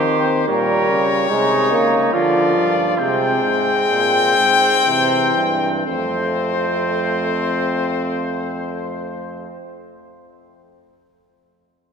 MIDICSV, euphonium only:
0, 0, Header, 1, 2, 480
1, 0, Start_track
1, 0, Tempo, 806452
1, 289, Time_signature, 3, 2, 24, 8
1, 773, Tempo, 845070
1, 1733, Tempo, 903614
1, 2213, Tempo, 956938
1, 2693, Tempo, 1016949
1, 3173, Tempo, 1056338
1, 5927, End_track
2, 0, Start_track
2, 0, Title_t, "Euphonium"
2, 0, Program_c, 0, 58
2, 0, Note_on_c, 0, 51, 112
2, 286, Note_off_c, 0, 51, 0
2, 289, Note_on_c, 0, 46, 91
2, 524, Note_off_c, 0, 46, 0
2, 531, Note_on_c, 0, 49, 85
2, 769, Note_off_c, 0, 49, 0
2, 777, Note_on_c, 0, 48, 84
2, 1010, Note_on_c, 0, 49, 83
2, 1019, Note_off_c, 0, 48, 0
2, 1245, Note_off_c, 0, 49, 0
2, 1248, Note_on_c, 0, 50, 85
2, 1488, Note_on_c, 0, 43, 78
2, 1497, Note_off_c, 0, 50, 0
2, 1728, Note_off_c, 0, 43, 0
2, 1732, Note_on_c, 0, 48, 96
2, 1965, Note_off_c, 0, 48, 0
2, 1967, Note_on_c, 0, 44, 72
2, 2207, Note_off_c, 0, 44, 0
2, 2213, Note_on_c, 0, 46, 76
2, 2445, Note_off_c, 0, 46, 0
2, 2451, Note_on_c, 0, 44, 76
2, 2689, Note_off_c, 0, 44, 0
2, 2694, Note_on_c, 0, 48, 90
2, 2925, Note_off_c, 0, 48, 0
2, 2927, Note_on_c, 0, 43, 76
2, 3167, Note_off_c, 0, 43, 0
2, 3170, Note_on_c, 0, 41, 75
2, 4850, Note_off_c, 0, 41, 0
2, 5927, End_track
0, 0, End_of_file